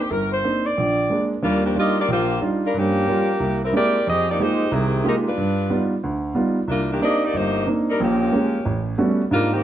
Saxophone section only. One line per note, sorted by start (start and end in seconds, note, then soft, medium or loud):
0.01 0.11 G4 medium
0.11 0.32 A#4 medium
0.32 0.63 C5 medium
0.65 1.31 D5 medium
1.43 1.63 G3 medium
1.43 1.63 A#3 medium
1.43 1.63 D4 medium
1.43 1.63 F4 medium
1.65 1.76 F3 medium
1.65 1.76 A#3 medium
1.65 1.75 D4 medium
1.65 1.76 G4 medium
1.79 1.97 A#3 medium
1.79 1.97 F4 medium
1.79 1.97 G4 medium
1.79 1.97 D#5 medium
2.00 2.09 A#3 medium
2.00 2.09 F4 medium
2.00 2.09 G4 medium
2.00 2.09 D5 medium
2.12 2.41 A#3 medium
2.12 2.41 F4 medium
2.12 2.41 G4 medium
2.12 2.41 C5 loud
2.66 2.75 G3 medium
2.66 2.75 D4 medium
2.66 2.75 F4 medium
2.66 2.75 A#4 medium
2.78 3.38 F3 medium
2.78 3.60 A#3 medium
2.78 3.38 C#4 medium
2.78 3.59 G4 loud
3.65 3.74 G3 medium
3.65 3.74 C4 medium
3.65 3.74 E4 medium
3.65 3.74 A#4 medium
3.76 4.06 C4 medium
3.76 4.05 G4 medium
3.76 4.06 A#4 medium
3.76 4.05 D5 loud
4.09 4.29 C4 loud
4.09 4.28 G4 medium
4.09 4.28 G#4 medium
4.09 4.29 D#5 loud
4.29 4.39 A#3 medium
4.29 4.39 D#4 medium
4.29 4.39 G4 medium
4.29 4.39 D5 medium
4.41 4.73 G#3 medium
4.41 4.73 D#4 medium
4.41 4.72 G4 medium
4.41 4.73 C5 medium
4.74 5.05 D#3 medium
4.74 5.05 C4 medium
4.74 5.04 G4 medium
4.74 5.05 G#4 medium
5.05 5.15 G#3 medium
5.05 5.15 D#4 medium
5.05 5.15 G4 medium
5.05 5.15 A#4 medium
5.27 5.88 G3 medium
5.27 5.88 D4 medium
5.27 5.88 F4 medium
5.27 5.88 B4 medium
6.69 6.88 G3 medium
6.69 6.88 A#3 medium
6.69 6.88 D4 medium
6.69 6.89 F4 medium
6.92 7.02 D#3 medium
6.92 7.01 A#3 medium
6.92 7.01 D4 medium
6.92 7.01 G4 medium
7.02 7.22 A#3 medium
7.02 7.22 D4 medium
7.02 7.22 G4 medium
7.02 7.22 D#5 loud
7.24 7.35 A#3 medium
7.24 7.35 D#4 medium
7.24 7.35 G4 medium
7.24 7.35 D5 loud
7.36 7.68 A#3 medium
7.36 7.68 D#4 medium
7.36 7.68 G4 medium
7.36 7.68 C5 loud
7.90 8.00 G3 medium
7.90 8.00 D4 medium
7.90 8.00 D#4 medium
7.90 8.00 A#4 medium
8.02 8.63 F3 medium
8.02 8.62 A#3 medium
8.02 8.95 C#4 medium
8.02 8.96 G4 medium
9.32 9.52 G3 medium
9.32 9.52 A#3 medium
9.32 9.51 D4 medium
9.32 9.52 F4 loud
9.53 9.63 D#3 medium
9.53 9.63 A#3 medium
9.53 9.63 C4 medium
9.53 9.63 G4 medium